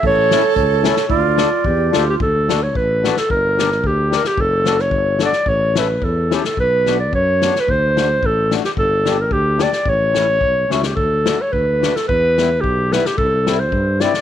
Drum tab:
SD |--o---oo|--o---o-|--o---oo|--oo--oo|
BD |o---o---|o---o---|o---o---|o---o---|

SD |--oo--oo|--o---oo|--o---oo|--o---oo|
BD |o---o---|o---o---|o---o---|o---o---|

SD |--o---oo|--o---oo|--o---oo|--o---oo|
BD |o---o---|o---o---|o---o---|o---o---|

SD |--o---oo|
BD |o---o---|